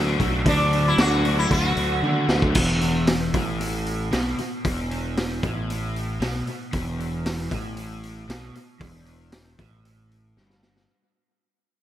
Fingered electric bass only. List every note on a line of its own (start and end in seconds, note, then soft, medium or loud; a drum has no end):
0.00 0.17 D2 medium
0.20 0.43 B1 medium
0.45 0.92 D2 medium
0.98 1.44 D2 medium
1.51 1.74 D2 medium
1.76 2.00 D2 medium
2.02 2.26 D3 medium
2.28 2.52 D2 medium
2.55 3.30 E1 medium
3.34 4.08 A1 medium
4.13 4.37 B1 medium
4.39 muted fingered electric bass stroke soft
4.65 5.39 E1 medium
5.43 6.17 A1 medium
6.20 6.45 B1 loud
6.47 muted fingered electric bass stroke soft
6.73 7.48 E1 medium
7.52 8.26 A1 medium
8.29 8.53 B1 medium
8.55 muted fingered electric bass stroke soft
8.80 9.55 E1 medium
9.59 10.33 A1 medium
10.37 10.85 G1 loud